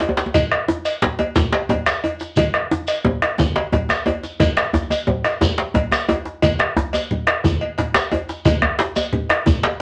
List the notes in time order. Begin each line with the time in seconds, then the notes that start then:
0.00 cowbell, djembe slap, djembe tone
0.09 djembe tone
0.17 djembe slap, shekere
0.26 djembe tone
0.34 bombo low, cowbell, high conga, low conga, djembe bass, shekere
0.51 bombo rim, cowbell, djembe slap
0.68 djembe slap, high conga, djembe tone
0.85 bombo rim, cowbell, shekere
1.02 djembe slap, high conga, low conga
1.19 cowbell, djembe slap, djembe tone
1.36 bombo low, djembe slap, high conga, djembe tone, djembe bass, shekere
1.52 cowbell, djembe slap, high conga
1.69 cowbell, djembe slap, djembe tone, low conga
1.86 bombo rim, djembe slap, high conga, shekere
2.04 cowbell, djembe tone
2.20 djembe slap, shekere
2.36 bombo low, cowbell, high conga, low conga, djembe bass, shekere
2.54 bombo rim, cowbell, djembe slap
2.71 djembe slap, high conga, djembe tone
2.87 bombo rim, cowbell, shekere
3.05 djembe tone, high conga, low conga
3.22 bombo rim, cowbell, djembe slap
3.38 bombo low, djembe tone, high conga, djembe bass, shekere
3.56 cowbell, djembe slap
3.72 cowbell, djembe slap, djembe bass, low conga
3.89 bombo rim, djembe tone, high conga, shekere
4.06 cowbell, djembe tone
4.23 djembe slap, shekere
4.40 bombo rim, bombo low, cowbell, djembe tone, high conga, djembe bass, low conga, shekere
4.57 bombo rim, cowbell, djembe slap, shekere
4.73 bombo rim, djembe slap, djembe tone, high conga, djembe bass, shekere
4.90 cowbell, djembe tone, high conga, shekere
5.07 djembe tone, high conga, low conga
5.24 bombo rim, cowbell, djembe slap, shekere
5.41 bombo rim, bombo low, djembe tone, high conga, djembe bass, shekere
5.58 djembe slap
5.74 cowbell, djembe slap, djembe bass, low conga
5.91 bombo rim, djembe slap, djembe tone, high conga, shekere
6.09 bombo rim, cowbell, djembe tone
6.25 djembe slap
6.42 bombo low, cowbell, djembe tone, high conga, djembe bass, low conga, shekere
6.59 bombo rim, cowbell, djembe slap
6.76 djembe slap, djembe tone, high conga, djembe bass
6.93 bombo rim, cowbell, djembe tone, shekere
7.11 high conga, low conga
7.27 bombo rim, cowbell, djembe slap
7.44 bombo low, djembe tone, high conga, djembe bass, shekere
7.61 cowbell, djembe slap, high conga
7.78 cowbell, djembe slap, low conga
7.94 bombo rim, djembe slap, shekere
8.11 cowbell, djembe tone
8.29 djembe slap, shekere
8.45 bombo low, cowbell, high conga, low conga, djembe bass, shekere
8.62 bombo rim, djembe bass
8.79 djembe slap, high conga
8.96 bombo rim, cowbell, djembe tone, shekere
9.13 high conga, low conga
9.29 bombo rim, cowbell, djembe slap
9.46 bombo low, high conga, djembe tone, djembe bass, shekere
9.63 cowbell, djembe slap, high conga